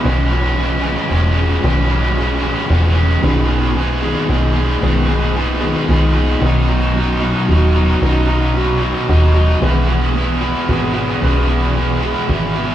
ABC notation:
X:1
M:3/4
L:1/8
Q:1/4=113
K:B
V:1 name="Overdriven electric guitar" clef=bass
[C,,G,,C,E,G,C] [C,E,G,C] [C,E,G,C] [C,,G,,C,E,G,C] [C,E,G,C] [C,E,G,C] | [C,,G,,C,E,G,C] [C,E,G,C] [C,E,G,C] [C,,G,,C,E,G,C] [C,E,G,C] [C,E,G,C] | [G,,D,G,B,DG] [G,B,DG] [G,B,DG] [G,,D,G,B,DG] [G,B,DG] [G,B,DG] | [G,,D,G,B,DG] [G,B,DG] [G,B,DG] [G,,D,G,B,DG] [G,B,DG] [G,B,DG] |
[B,,,F,,B,,F,D] [B,,F,D] [F,,B,,F,D] [B,,,F,,B,,F,D] [F,,B,,F,D] [B,,F,D] | [B,,,F,,B,,F,D] [B,,F,D] [F,,B,,F,D] [B,,,F,,B,,F,D] [F,,B,,F,D] [B,,F,D] | [E,,B,,E,G,B,E] [E,G,B,E] [E,G,B,E] [E,,B,,E,G,B,E] [E,G,B,E] [E,G,B,E] | [E,,B,,E,G,B,E] [E,G,B,E] [E,G,B,E] [E,,B,,E,G,B,E] [E,G,B,E] [E,G,B,E] |]
V:2 name="Fingered electric bass" clef=bass
B,,,,4 E,,,2 | B,,,,4 E,,,2 | B,,,,4 B,,,,2 | B,,,,4 B,,,,2 |
B,,,,4 D,,,2 | B,,,,4 D,,,2 | B,,,,4 G,,,2 | B,,,,4 G,,,2 |]